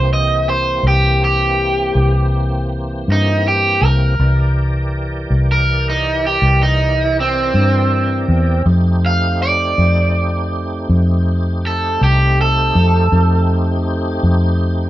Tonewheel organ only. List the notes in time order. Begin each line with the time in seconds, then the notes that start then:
Already playing: E3 A#3 C4 G4
4.20 E3 G4 A#4 D5
8.66 A3 C4 D#4 G4
13.12 A3 C4 D#4 G4